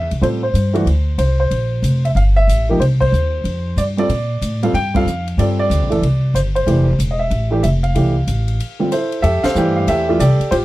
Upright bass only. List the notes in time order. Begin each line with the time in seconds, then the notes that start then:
0.01 E2
0.11 C2
0.21 A2
0.54 G2
0.86 D2
1.18 C2
1.51 A#1
1.82 F1
2.15 G1
2.48 A1
2.79 C2
3.12 D#2
3.44 F2
3.77 G2
4.09 A#2
4.41 A2
4.73 G2
5.05 F2
5.38 G2
5.70 D2
5.81 A#1
5.91 G1
6.02 C2
6.34 G1
6.66 F1
6.99 E1
7.30 A1
7.64 F1
7.95 C2
8.27 A1
9.23 F2
9.44 muted upright bass stroke
9.55 G2
9.87 E2
10.19 C2
10.40 muted upright bass stroke
10.51 A1